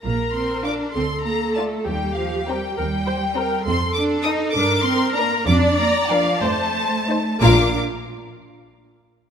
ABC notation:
X:1
M:6/8
L:1/16
Q:3/8=65
K:Bb
V:1 name="Violin section"
b2 c'2 d'2 c'2 b2 a2 | g2 f2 g2 g6 | c'2 d'2 e'2 d'2 c'2 b2 | d'2 b2 f2 a6 |
d'2 z8 z2 |]
V:2 name="Viola section"
B6 A6 | G6 B2 c2 B2 | A6 B6 | d6 c3 z3 |
[B,F]2 z8 z2 |]
V:3 name="Violin section"
z4 [Fd]2 z4 [Fd]2 | z4 [CB]2 z4 [CB]2 | z4 [EA]2 z4 [DB]2 | z4 [DB]2 z4 [Ec]2 |
[Bf]2 z8 z2 |]
V:4 name="Cello section"
B,2 C2 D2 C2 B,2 A,2 | G,2 F,2 G,2 G,6 | C2 D2 E2 D2 C2 B,2 | D2 B,2 F,2 A,6 |
D2 z8 z2 |]
V:5 name="Double bass section" clef=bass
B,,,6 D,,6 | E,,6 E,,6 | F,,6 G,,6 | F,,6 F,,6 |
B,,,2 z8 z2 |]